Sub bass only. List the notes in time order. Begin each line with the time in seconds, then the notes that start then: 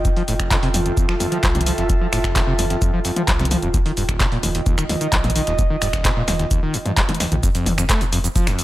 Already playing: F1
0.28 F1
0.63 F1
1.09 F1
1.43 C2
1.78 F1
2.13 F1
2.47 F1
2.93 F1
3.28 C2
3.63 D#1
3.97 D#1
4.32 D#1
4.78 D#1
5.13 A#1
5.47 D#1
5.82 D#1
6.16 D#1
6.62 D#1
6.97 D#1
7.32 A#1
7.66 F1
8.01 F1
8.47 F1